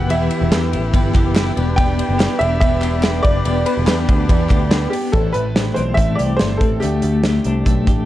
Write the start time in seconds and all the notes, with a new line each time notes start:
Already playing: F#1 B3 E4 G4 B4 F#5
0.10 E1 E3 B3 E4 G4 E5, ride
0.31 E4, ride
0.41 E1
0.51 E2 E3 B3 E4 G4, snare, clap, ride
0.73 A1 B3 E4 G4, ride
0.93 G1 E3 B3 E4 G4, kick, ride
1.14 F#1 G4, kick, clap, ride
1.35 E3 B3 E4 G4, snare, clap, ride
1.56 E1 B3 D4 G4 B4, ride
1.60 B3
1.76 E3 B3 D4 G4 G5, kick, ride
1.98 D4, ride
2.09 F#1
2.19 E3 B3 D4 G4, snare, clap, ride
2.39 E1 D4 G4 E5, ride
2.44 B3
2.60 E3 B3 D4 G4 E5, kick, ride
2.81 G4, clap, ride
3.03 E3 B3 D4 G4, snare, clap, ride
3.23 F#1 D4 G4 D5, kick, ride
3.27 B3
3.45 E1 E3 B3 D4 G4, ride
3.66 D4 B4, ride
3.77 E1
3.87 E2 E3 B3 D4 G4 B4, snare, clap, ride
4.08 D2 B3 D4 G4, kick, ride
4.29 E2 E3 B3 D4 G4, kick, ride
4.49 D2 G4, kick, clap, ride
4.71 E3 B3 D4 G4, snare, clap, ride
4.90 D4 G4, open hi-hat, ride
4.95 B3
5.12 A1 A2 E3 G3 C4 E4 A4, kick, closed hi-hat
5.33 A1 A3 C4 E4 B4, closed hi-hat
5.37 G3
5.55 A2 E3 G3 C4 E4 G4, snare, closed hi-hat
5.74 B1 C4 C5, closed hi-hat
5.94 A1 E3 G3 A3 C4 E5, kick, closed hi-hat
5.99 E4
6.15 C2 E4 G4 D5, closed hi-hat
6.20 G3 C4
6.37 G1 A2 E3 G3 A3 C5, snare, closed hi-hat
6.41 C4 E4
6.57 A1 E4 A4, kick, closed hi-hat
6.61 G3 C4
6.80 D2 D3 G3 A3 D4 G4, closed hi-hat
7.01 D2 G3 A3 D4, closed hi-hat
7.23 D3 G3 A3 D4 G4, snare, closed hi-hat
7.44 C2 D4, closed hi-hat
7.65 B1 D3 G3 A3 D4, kick, closed hi-hat
7.86 A1 G3 A3 D4 G4, kick, closed hi-hat